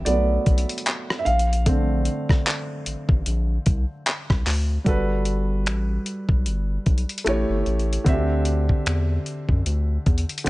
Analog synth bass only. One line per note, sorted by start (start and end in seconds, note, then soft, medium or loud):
0.06 0.38 B1 medium
0.47 0.65 B1 medium
1.26 2.09 A#1 loud
2.30 2.36 A1 soft
2.86 2.96 A1 medium
3.09 3.22 A1 medium
3.27 3.58 A#1 medium
3.67 3.85 C2 loud
4.30 4.43 C2 medium
4.47 4.78 D2 medium
4.86 5.68 G1 loud
5.67 5.98 A1 medium
6.29 6.48 B1 medium
6.46 6.78 G1 medium
6.87 7.05 B1 medium
7.26 7.45 A1 medium
7.49 7.63 G1 medium
7.66 7.98 A1 medium
8.06 8.70 D2 loud
8.86 9.18 E2 medium
9.49 9.62 F#2 loud
9.66 9.98 D2 medium
10.06 10.25 E2 medium
10.46 10.50 D2 loud